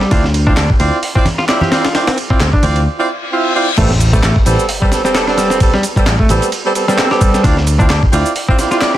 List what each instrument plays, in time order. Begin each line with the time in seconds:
Already playing: clean electric guitar G3
0.01 snare
0.11 picked electric bass D2, horn section C4 E4 F4 D5, clean electric guitar D4, kick, ride
0.24 snare
0.34 ride
0.47 horn section C4 E4 F4 D5, clean electric guitar D4, kick
0.57 picked electric bass D2, clean electric guitar D4, snare, clap, ride
0.70 kick
0.80 picked electric bass D2, horn section C4 E4 F4 D5, ride
1.03 open hi-hat
1.15 clean electric guitar C4, horn section C4 E4 F4 D5, kick
1.25 snare, ride, high conga
1.38 clean electric guitar F4, snare
1.48 horn section C4 E4 F4 E5, clean electric guitar D5, snare, clap, ride
1.61 clean electric guitar G4, snare, high conga
1.71 clean electric guitar C4, horn section C4 E4 F4 D5, snare, ride
1.84 clean electric guitar F4, snare, ride
1.95 horn section C4 E4 F4 D5, snare, ride
2.07 clean electric guitar C4, snare, ride
2.18 ride
2.30 horn section C4 E4 F4 D5, clean electric guitar C4, muted picked electric bass stroke, kick
2.40 picked electric bass D2, snare, clap, ride
2.53 clean electric guitar D4, kick
2.63 picked electric bass D2, horn section C4 E4 F4 D5, ride, high conga
2.76 ride
2.86 reverse cymbal
2.98 horn section C4 E4 F4 D5
3.32 horn section C4 E4 F4 E5
3.55 horn section C4 E4 F4 D5
3.77 picked electric bass A1, horn section G3 B3 C4 A4, clean electric guitar A3, kick, crash, ride, sub drop, shaker
3.90 snare
4.00 ride, shaker
4.13 horn section G3 B3 C4 A4, clean electric guitar A3, kick, shaker
4.23 picked electric bass A1, clean electric guitar A3, snare, clap, ride, shaker
4.36 kick
4.46 picked electric bass A1, horn section G3 B3 C4 A4, ride, shaker
4.59 shaker
4.69 open hi-hat, shaker
4.82 horn section G3 B3 C4 A4, clean electric guitar G3, kick
4.92 horn section G3 B3 C4 A4, snare, ride, shaker
5.05 horn section G3 B3 C4 A4, clean electric guitar C4, snare, shaker
5.15 clean electric guitar A4, snare, clap, ride, shaker
5.27 horn section G3 B3 C4 A4, clean electric guitar D4, snare
5.37 clean electric guitar G3, snare, ride, shaker
5.50 clean electric guitar C4, snare, shaker
5.60 horn section G3 B3 C4 A4, kick, ride, shaker
5.74 clean electric guitar G3, snare
5.83 ride, shaker
5.96 horn section G3 B3 C4 A4, clean electric guitar G3, muted picked electric bass stroke, kick, shaker
6.06 picked electric bass A1, snare, clap, ride, shaker
6.19 clean electric guitar A3, kick
6.29 picked electric bass A1, horn section G3 B3 C4 A4, ride, shaker
6.42 ride, shaker
6.52 ride, shaker
6.65 horn section G3 B3 C4 A4
6.75 horn section G3 B3 C4 A4, ride, shaker
6.88 horn section G3 B3 C4 A4, clean electric guitar G3, snare, shaker
6.98 clean electric guitar C4, snare, clap, ride, shaker
7.11 horn section G3 B3 C4 A4, clean electric guitar G4, snare
7.21 clean electric guitar G3, kick, ride, shaker
7.34 snare, shaker
7.43 picked electric bass D2, horn section C4 E4 F4 D5, clean electric guitar D4, kick, ride, shaker
7.57 snare
7.67 ride, shaker
7.79 horn section C4 E4 F4 D5, clean electric guitar D4, kick, shaker
7.89 picked electric bass D2, clean electric guitar D4, snare, clap, ride, shaker
8.03 kick
8.13 picked electric bass D2, horn section C4 E4 F4 D5, ride, shaker
8.26 shaker
8.36 open hi-hat, shaker
8.48 clean electric guitar C4, horn section C4 E4 F4 D5, kick
8.59 horn section C4 E4 F4 D5, snare, ride, shaker
8.71 horn section C4 E4 F4 D5, clean electric guitar F4, snare, shaker
8.81 clean electric guitar D5, snare, clap, ride, shaker
8.94 clean electric guitar G4, snare